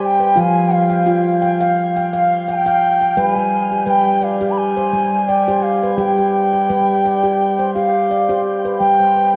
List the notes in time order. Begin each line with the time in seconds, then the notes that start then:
Already playing: G4 C5 D5
0.05 G5
0.20 B4
0.36 F3 F4 F5
0.40 G#5
0.74 F5
0.90 G5
1.06 F4 G5
1.42 G5
1.61 F5
1.97 G5
2.13 F5
2.48 G5 G#5
2.56 G5
2.66 F5 G5
3.01 G5
3.17 G3 B4 G#5
3.36 G3
3.72 G4
3.86 G3 B4 G5
4.21 D5 F5
4.41 G4
4.51 B5
4.58 G#5
4.77 C5
4.93 G3
5.28 D5 G5
5.48 G4 C5
5.63 F5
5.83 B4
5.98 G3 G4 G5
6.18 G4
6.53 G4
6.69 G3 B4
7.05 D5
7.23 G4
7.59 C5
7.74 G4 F5
8.11 D5
8.29 G4 C5
8.65 B4
8.79 G3 G5
9.00 C5
9.16 B4